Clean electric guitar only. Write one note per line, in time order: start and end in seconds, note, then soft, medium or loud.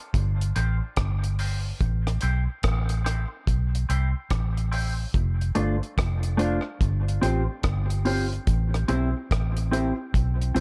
0.56 0.76 C4 medium
0.56 0.76 F4 medium
0.56 0.76 G4 loud
0.56 0.77 C5 medium
1.39 1.59 C4 medium
1.39 1.59 F4 medium
1.39 1.60 G4 medium
1.39 1.60 C5 medium
2.22 2.42 C4 medium
2.22 2.43 E4 medium
2.22 2.43 G4 medium
2.22 2.43 C5 loud
3.05 3.25 C4 medium
3.05 3.26 E4 medium
3.05 3.26 G4 medium
3.05 3.26 C5 medium
3.89 4.09 C4 medium
3.89 4.09 E4 medium
3.89 4.10 G4 medium
3.89 4.10 C5 loud
4.72 4.92 C4 medium
4.72 4.92 E4 medium
4.72 4.93 G4 medium
4.72 4.93 C5 medium
5.55 5.75 A3 medium
5.55 5.76 D4 medium
5.55 5.76 F4 medium
5.55 5.76 C5 medium
6.37 6.58 A3 medium
6.37 6.59 D4 loud
6.37 6.59 F4 loud
6.37 6.59 C5 loud
7.22 7.42 C4 medium
7.22 7.42 F4 medium
7.22 7.43 G4 medium
7.22 7.43 C5 loud
8.05 8.25 C4 medium
8.05 8.26 F4 medium
8.05 8.26 G4 medium
8.05 8.26 C5 medium
8.88 9.09 C4 medium
8.88 9.09 E4 medium
8.88 9.09 G4 medium
8.88 9.09 C5 loud
9.71 9.92 C4 medium
9.71 9.92 E4 medium
9.71 9.92 G4 medium
9.71 9.93 C5 loud
10.55 10.60 C4 medium
10.55 10.60 E4 medium
10.55 10.60 G4 medium
10.55 10.60 C5 medium